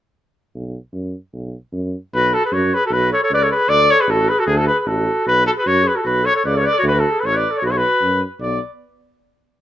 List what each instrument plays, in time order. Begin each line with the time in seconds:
0.55 tuba B1
0.93 tuba F#2
1.33 tuba B1
1.73 tuba F#2
2.13 tuba B1, clarinet F#4, trumpet B4
2.34 clarinet F#4, trumpet A4
2.45 clarinet G#4, trumpet B4
2.52 tuba F#2, clarinet F#4, trumpet C#5
2.74 clarinet G#4, trumpet B4
2.85 clarinet F#4, trumpet A4
2.90 tuba B1, clarinet F#4, trumpet B4
3.13 clarinet A4, trumpet C#5
3.23 clarinet A4, trumpet C#5
3.30 tuba C#2, clarinet B4, trumpet D5
3.42 clarinet A4, trumpet C#5
3.51 clarinet G#4, trumpet B4
3.68 tuba D2, clarinet A4, trumpet D5
3.90 clarinet A4, trumpet C#5
4.01 clarinet G#4, trumpet B4
4.07 tuba A1, clarinet F#4, trumpet A4
4.28 clarinet G#4, trumpet B4
4.39 clarinet F#4, trumpet A4
4.46 tuba D2, clarinet D4, trumpet G#4
4.57 clarinet F#4, trumpet A4
4.67 clarinet G#4, trumpet B4
4.79 clarinet G#4, trumpet B4
4.86 tuba A1, clarinet F#4, trumpet A4
5.25 tuba B1, clarinet F#4, trumpet B4
5.46 clarinet F#4, trumpet A4
5.56 clarinet G#4, trumpet B4
5.64 tuba F#2, clarinet F#4, trumpet C#5
5.83 clarinet G#4
5.87 trumpet B4
5.95 clarinet F#4, trumpet A4
6.03 tuba B1, clarinet F#4, trumpet B4
6.23 clarinet A4, trumpet C#5
6.35 clarinet A4, trumpet C#5
6.45 tuba C#2, clarinet B4, trumpet D5
6.55 clarinet A4, trumpet C#5
6.62 clarinet B4, trumpet D5
6.73 clarinet A4
6.78 clarinet F#4, trumpet C#5
6.83 tuba D2
6.87 clarinet F#4, trumpet B4
6.99 trumpet A4
7.11 clarinet G#4
7.20 tuba A1, clarinet A4, trumpet B4
7.25 trumpet C#5
7.33 clarinet B4, trumpet D5
7.51 clarinet A4
7.57 trumpet C#5
7.62 tuba B1, clarinet F#4, trumpet B4
7.69 clarinet A4, trumpet C#5
7.75 clarinet F#4, trumpet B4
8.02 tuba F#2
8.40 tuba B1, clarinet B3, trumpet D5